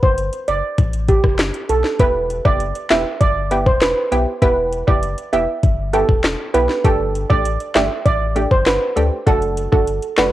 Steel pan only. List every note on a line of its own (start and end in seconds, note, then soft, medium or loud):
0.03 0.16 C5 medium
0.48 0.61 D5 medium
1.09 1.21 G4 medium
1.69 1.82 A4 medium
2.00 2.12 B4 loud
2.45 2.58 D5 medium
2.91 3.03 E5 medium
3.21 3.33 D5 medium
3.66 3.79 C5 medium
3.82 4.24 B4 medium
4.42 4.55 B4 loud
4.88 5.00 D5 medium
5.33 5.46 E5 medium
5.93 6.06 A4 medium
6.54 6.67 B4 medium
6.84 6.97 A4 loud
7.30 7.42 D5 medium
7.75 7.88 E5 medium
8.06 8.18 D5 medium
8.51 8.64 C5 medium
8.67 9.09 B4 medium
9.27 9.40 A4 loud
9.72 9.85 A4 medium
10.18 10.31 B4 medium